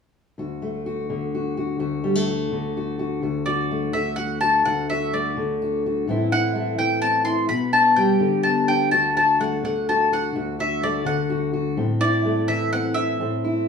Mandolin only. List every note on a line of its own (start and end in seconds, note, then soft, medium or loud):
3.46 3.95 D5 medium
3.93 4.16 E5 medium
4.16 4.40 F#5 medium
4.41 4.65 A5 medium
4.65 4.89 F#5 medium
4.90 5.14 E5 medium
5.14 5.80 D5 soft
6.32 6.78 F#5 medium
6.79 7.01 G5 medium
7.02 7.24 A5 medium
7.25 7.48 C6 medium
7.49 7.73 B5 medium
7.73 7.96 A5 medium
7.96 8.43 G5 medium
8.43 8.68 A5 medium
8.68 8.91 G5 medium
8.91 9.16 A5 medium
9.17 9.40 A5 medium
9.41 9.64 F#5 medium
9.65 9.89 F#5 medium
9.89 10.13 A5 medium
10.13 10.60 F#5 medium
10.60 10.84 E5 medium
10.83 11.07 D5 medium
11.06 11.51 F#5 medium
12.01 12.50 D5 medium
12.48 12.72 E5 medium
12.73 12.97 F#5 medium
12.94 13.68 E5 medium